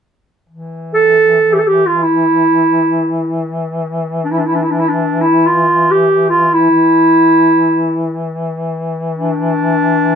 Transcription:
0.49 6.70 E3 medium
0.94 1.55 A4 medium
1.53 1.61 G4 medium
1.59 1.69 A4 medium
1.67 1.88 G4 medium
1.86 2.04 F4 medium
2.03 3.58 E4 medium
4.25 4.33 D4 soft
4.32 4.40 E4 medium
4.38 4.48 D4 medium
4.47 4.57 E4 medium
4.55 4.64 D4 medium
4.63 4.72 E4 soft
4.71 4.81 D4 soft
4.80 4.90 E4 medium
4.88 5.23 D4 medium
5.21 5.48 E4 medium
5.46 5.92 F4 medium
5.91 6.29 G4 medium
6.30 6.55 F4 medium
6.54 8.26 E4 medium
6.70 10.15 E3 medium
9.18 10.15 D4 medium

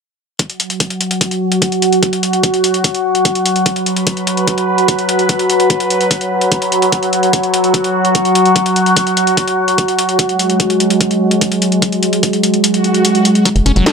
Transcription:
0.39 13.44 F#3 medium
0.39 3.68 F#4 medium
0.39 kick loud
0.39 closed hi-hat medium
0.50 closed hi-hat soft
0.60 closed hi-hat medium
0.70 closed hi-hat soft
0.80 kick loud
0.80 closed hi-hat medium
0.90 closed hi-hat soft
1.01 closed hi-hat medium
1.11 closed hi-hat soft
1.21 kick loud
1.21 closed hi-hat loud
1.31 closed hi-hat soft
1.52 closed hi-hat soft
1.62 kick loud
1.62 closed hi-hat medium
1.72 closed hi-hat soft
1.82 closed hi-hat medium
1.92 closed hi-hat soft
2.03 kick loud
2.03 closed hi-hat medium
2.13 closed hi-hat soft
2.23 closed hi-hat medium
2.33 closed hi-hat soft
2.43 kick loud
2.43 closed hi-hat medium
2.54 closed hi-hat soft
2.64 closed hi-hat medium
2.74 closed hi-hat soft
2.84 kick loud
2.84 closed hi-hat medium
2.94 closed hi-hat soft
3.15 closed hi-hat soft
3.25 kick loud
3.25 closed hi-hat medium
3.35 closed hi-hat soft
3.46 closed hi-hat medium
3.56 closed hi-hat soft
3.66 6.94 B4 medium
3.66 kick loud
3.66 closed hi-hat medium
3.76 closed hi-hat soft
3.86 closed hi-hat medium
3.96 closed hi-hat soft
4.07 kick loud
4.07 closed hi-hat medium
4.17 closed hi-hat soft
4.27 closed hi-hat medium
4.37 closed hi-hat soft
4.47 kick loud
4.47 closed hi-hat medium
4.58 closed hi-hat soft
4.78 closed hi-hat soft
4.88 kick loud
4.88 closed hi-hat medium
4.99 closed hi-hat soft
5.09 closed hi-hat medium
5.19 closed hi-hat soft
5.29 kick loud
5.29 closed hi-hat medium
5.39 closed hi-hat soft
5.50 closed hi-hat medium
5.60 closed hi-hat soft
5.70 kick loud
5.70 closed hi-hat medium
5.80 closed hi-hat soft
5.90 closed hi-hat medium
6.01 closed hi-hat soft
6.11 kick loud
6.11 closed hi-hat medium
6.21 closed hi-hat soft
6.41 closed hi-hat soft
6.52 kick loud
6.52 closed hi-hat medium
6.62 closed hi-hat soft
6.72 closed hi-hat medium
6.82 closed hi-hat soft
6.92 10.21 F#4 medium
6.92 kick loud
6.92 closed hi-hat medium
7.03 closed hi-hat soft
7.13 closed hi-hat medium
7.23 closed hi-hat soft
7.33 kick loud
7.33 closed hi-hat medium
7.43 closed hi-hat soft
7.54 closed hi-hat medium
7.64 closed hi-hat soft
7.74 kick loud
7.74 closed hi-hat medium
7.84 closed hi-hat soft
8.05 closed hi-hat soft
8.15 kick loud
8.15 closed hi-hat medium
8.25 closed hi-hat soft
8.35 closed hi-hat medium
8.45 closed hi-hat soft
8.56 kick loud
8.56 closed hi-hat medium
8.66 closed hi-hat soft
8.76 closed hi-hat medium
8.86 closed hi-hat soft
8.96 kick loud
8.96 closed hi-hat medium
9.07 closed hi-hat soft
9.17 closed hi-hat medium
9.27 closed hi-hat soft
9.37 kick loud
9.37 closed hi-hat medium
9.48 closed hi-hat soft
9.68 closed hi-hat soft
9.78 kick loud
9.78 closed hi-hat medium
9.88 closed hi-hat soft
9.99 closed hi-hat medium
10.09 closed hi-hat soft
10.19 13.48 G#3 medium
10.19 kick loud
10.19 closed hi-hat loud
10.29 closed hi-hat soft
10.39 closed hi-hat medium
10.50 closed hi-hat soft
10.60 kick loud
10.60 closed hi-hat loud
10.70 closed hi-hat soft
10.80 closed hi-hat medium
10.90 closed hi-hat soft
11.01 kick loud
11.01 closed hi-hat medium
11.11 closed hi-hat soft
11.31 closed hi-hat soft
11.41 kick loud
11.41 closed hi-hat medium
11.52 closed hi-hat soft
11.62 closed hi-hat medium
11.72 closed hi-hat soft
11.82 kick loud
11.82 closed hi-hat medium
11.92 closed hi-hat soft
12.03 closed hi-hat medium
12.13 closed hi-hat soft
12.23 kick loud
12.23 closed hi-hat loud
12.33 closed hi-hat soft
12.43 closed hi-hat medium
12.54 closed hi-hat soft
12.64 closed hi-hat medium
12.64 swell medium
12.74 closed hi-hat soft
12.84 closed hi-hat soft
12.94 closed hi-hat soft
13.05 closed hi-hat medium
13.15 closed hi-hat soft
13.25 closed hi-hat medium
13.35 closed hi-hat soft
13.45 13.49 F#3 medium
13.45 13.93 F#3 medium
13.45 13.93 F#4 medium
13.45 kick loud
13.45 closed hi-hat loud
13.56 13.61 F#1 medium
13.56 closed hi-hat soft
13.66 13.72 F#1 medium
13.66 13.72 C#4 medium
13.66 closed hi-hat medium
13.76 13.82 F#1 loud
13.76 13.85 F#3 medium
13.76 closed hi-hat soft
13.86 kick loud
13.86 snare loud
13.86 closed hi-hat loud

